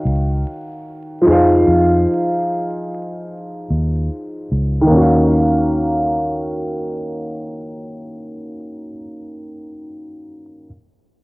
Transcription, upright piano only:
0, 0, Header, 1, 2, 480
1, 0, Start_track
1, 0, Tempo, 810811
1, 987, Time_signature, 4, 2, 24, 8
1, 6651, End_track
2, 0, Start_track
2, 0, Title_t, "Upright piano"
2, 0, Program_c, 0, 0
2, 0, Control_c, 0, 64, 127
2, 0, Note_on_c, 0, 51, 65
2, 0, Note_on_c, 0, 63, 61
2, 0, Note_on_c, 0, 66, 57
2, 0, Note_on_c, 0, 73, 57
2, 0, Note_on_c, 0, 77, 83
2, 710, Note_off_c, 0, 51, 0
2, 717, Note_off_c, 0, 63, 0
2, 719, Note_on_c, 0, 53, 71
2, 725, Note_off_c, 0, 66, 0
2, 732, Note_off_c, 0, 73, 0
2, 735, Note_on_c, 0, 63, 67
2, 740, Note_off_c, 0, 77, 0
2, 750, Note_on_c, 0, 68, 62
2, 754, Control_c, 0, 64, 0
2, 766, Note_on_c, 0, 72, 61
2, 780, Note_on_c, 0, 77, 79
2, 860, Control_c, 0, 64, 127
2, 2629, Note_off_c, 0, 53, 0
2, 2637, Note_off_c, 0, 63, 0
2, 2645, Note_off_c, 0, 68, 0
2, 2653, Note_off_c, 0, 72, 0
2, 2660, Note_off_c, 0, 77, 0
2, 2849, Note_on_c, 0, 51, 75
2, 2880, Note_on_c, 0, 58, 74
2, 2909, Note_on_c, 0, 61, 72
2, 2914, Control_c, 0, 64, 0
2, 2939, Note_on_c, 0, 66, 68
2, 2970, Note_on_c, 0, 77, 80
2, 3004, Control_c, 0, 64, 127
2, 5209, Note_off_c, 0, 51, 0
2, 5240, Note_off_c, 0, 58, 0
2, 5270, Note_off_c, 0, 61, 0
2, 5300, Note_off_c, 0, 66, 0
2, 5331, Note_off_c, 0, 77, 0
2, 6314, Control_c, 0, 64, 0
2, 6651, End_track
0, 0, End_of_file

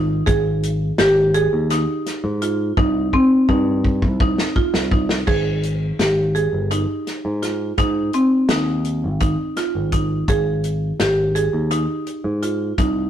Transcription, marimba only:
0, 0, Header, 1, 2, 480
1, 0, Start_track
1, 0, Key_signature, -4, "major"
1, 0, Tempo, 715137
1, 187, Time_signature, 7, 3, 24, 8
1, 8791, End_track
2, 0, Start_track
2, 0, Title_t, "Marimba"
2, 0, Program_c, 0, 12
2, 0, Note_on_c, 0, 63, 64
2, 80, Note_off_c, 0, 63, 0
2, 177, Note_on_c, 0, 68, 79
2, 452, Note_off_c, 0, 68, 0
2, 664, Note_on_c, 0, 67, 84
2, 801, Note_off_c, 0, 67, 0
2, 902, Note_on_c, 0, 68, 77
2, 1039, Note_off_c, 0, 68, 0
2, 1147, Note_on_c, 0, 63, 69
2, 1419, Note_off_c, 0, 63, 0
2, 1623, Note_on_c, 0, 65, 63
2, 1760, Note_off_c, 0, 65, 0
2, 1861, Note_on_c, 0, 63, 89
2, 1998, Note_off_c, 0, 63, 0
2, 2104, Note_on_c, 0, 60, 77
2, 2240, Note_off_c, 0, 60, 0
2, 2341, Note_on_c, 0, 63, 72
2, 2614, Note_off_c, 0, 63, 0
2, 2823, Note_on_c, 0, 63, 72
2, 2959, Note_off_c, 0, 63, 0
2, 3060, Note_on_c, 0, 65, 74
2, 3197, Note_off_c, 0, 65, 0
2, 3301, Note_on_c, 0, 63, 61
2, 3438, Note_off_c, 0, 63, 0
2, 3538, Note_on_c, 0, 68, 73
2, 3812, Note_off_c, 0, 68, 0
2, 4023, Note_on_c, 0, 67, 61
2, 4159, Note_off_c, 0, 67, 0
2, 4261, Note_on_c, 0, 68, 70
2, 4398, Note_off_c, 0, 68, 0
2, 4503, Note_on_c, 0, 63, 67
2, 4775, Note_off_c, 0, 63, 0
2, 4984, Note_on_c, 0, 65, 59
2, 5119, Note_off_c, 0, 65, 0
2, 5224, Note_on_c, 0, 63, 82
2, 5359, Note_off_c, 0, 63, 0
2, 5465, Note_on_c, 0, 60, 67
2, 5600, Note_off_c, 0, 60, 0
2, 5707, Note_on_c, 0, 63, 70
2, 5979, Note_off_c, 0, 63, 0
2, 6180, Note_on_c, 0, 63, 60
2, 6317, Note_off_c, 0, 63, 0
2, 6424, Note_on_c, 0, 65, 73
2, 6560, Note_off_c, 0, 65, 0
2, 6664, Note_on_c, 0, 63, 56
2, 6800, Note_off_c, 0, 63, 0
2, 6907, Note_on_c, 0, 68, 79
2, 7179, Note_off_c, 0, 68, 0
2, 7386, Note_on_c, 0, 67, 66
2, 7521, Note_off_c, 0, 67, 0
2, 7620, Note_on_c, 0, 68, 66
2, 7757, Note_off_c, 0, 68, 0
2, 7859, Note_on_c, 0, 63, 71
2, 8133, Note_off_c, 0, 63, 0
2, 8340, Note_on_c, 0, 65, 59
2, 8477, Note_off_c, 0, 65, 0
2, 8581, Note_on_c, 0, 63, 78
2, 8718, Note_off_c, 0, 63, 0
2, 8791, End_track
0, 0, End_of_file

